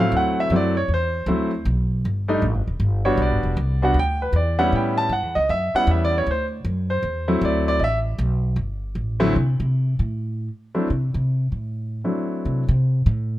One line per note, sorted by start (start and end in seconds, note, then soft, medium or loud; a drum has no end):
0.00 0.11 A2 loud
0.00 0.48 F#3 medium
0.00 0.48 A3 medium
0.00 0.48 C4 medium
0.00 0.49 E4 medium
0.00 0.13 F5 medium
0.12 0.49 D2 medium
0.17 0.39 F#5 loud
0.40 0.52 E5 medium
0.50 0.88 F#2 loud
0.50 0.74 F#3 medium
0.50 0.73 A3 medium
0.50 0.73 C4 medium
0.50 0.74 E4 medium
0.56 0.77 D5 medium
0.77 0.90 C#5 medium
0.88 1.26 E2 medium
0.94 1.64 C5 medium
1.26 1.64 D2 loud
1.26 1.50 F#3 medium
1.26 1.50 A3 medium
1.26 1.50 C4 medium
1.26 1.50 E4 medium
1.65 2.03 B1 loud
2.05 2.41 G1 loud
2.28 2.41 G3 medium
2.28 2.41 A3 medium
2.28 2.41 D4 medium
2.28 2.42 D#4 medium
2.42 2.55 A1 medium
2.55 2.67 G1 medium
2.67 2.79 D#1 medium
2.80 3.17 G1 loud
3.05 3.55 G3 medium
3.05 3.55 B3 medium
3.05 3.55 D4 medium
3.05 3.56 F#4 medium
3.05 3.19 C#5 medium
3.17 3.31 B1 loud
3.22 3.80 D5 medium
3.31 3.43 G1 medium
3.43 3.56 E1 medium
3.57 3.93 C2 loud
3.82 3.95 G3 medium
3.82 3.95 B3 medium
3.82 3.95 D4 medium
3.82 3.95 F#4 medium
3.82 3.97 F#5 medium
3.94 4.32 D2 medium
3.99 4.22 G5 loud
4.22 4.35 B4 medium
4.33 4.71 E2 loud
4.33 4.60 D5 medium
4.59 5.09 G3 medium
4.59 5.09 B3 medium
4.59 5.09 C#4 medium
4.59 5.09 E4 medium
4.59 4.73 F#5 loud
4.72 5.09 A2 medium
4.72 4.99 G5 medium
4.98 5.11 A5 loud
5.09 5.23 G2 medium
5.09 5.36 F#5 medium
5.23 5.35 E2 medium
5.35 5.49 C#2 medium
5.35 5.49 D#5 medium
5.49 5.73 F#2 medium
5.49 5.74 E5 loud
5.74 6.24 G3 medium
5.74 6.25 B3 medium
5.74 6.24 C#4 medium
5.74 6.25 E4 medium
5.74 5.89 F#5 loud
5.74 muted upright bass stroke soft
5.87 6.25 E2 loud
5.91 6.02 E5 medium
6.05 6.16 D5 medium
6.18 6.29 C#5 medium
6.27 6.64 D2 loud
6.31 6.44 C5 medium
6.65 7.02 F#2 loud
6.90 7.39 C5 medium
7.03 7.40 E2 medium
7.28 7.78 F#3 medium
7.28 7.78 A3 medium
7.28 7.78 C4 medium
7.28 7.78 E4 medium
7.41 7.79 D2 loud
7.41 7.67 D5 medium
7.68 7.81 D5 loud
7.79 8.17 A1 medium
7.79 7.82 D#5 medium
7.84 7.98 E5 loud
8.18 8.55 B1 loud
8.56 8.94 G1 medium
8.95 9.33 A1 medium
9.20 9.33 D2 medium
9.20 9.33 F#3 medium
9.20 9.33 A3 medium
9.20 9.33 C4 medium
9.20 9.33 E4 loud
9.36 9.59 C3 medium
9.60 9.95 C3 medium
9.99 10.47 A2 medium
10.75 10.87 F#3 medium
10.75 10.87 A3 medium
10.75 10.87 C4 medium
10.75 10.87 D4 medium
10.75 10.87 E4 medium
10.90 11.13 C3 medium
11.14 11.49 C3 medium
11.52 12.00 A2 medium
12.04 12.62 F#3 medium
12.04 12.62 A3 soft
12.04 12.62 C4 soft
12.04 12.62 D4 soft
12.04 12.62 E4 medium
12.45 12.68 C3 medium
12.68 13.03 C3 medium
13.06 13.39 A2 medium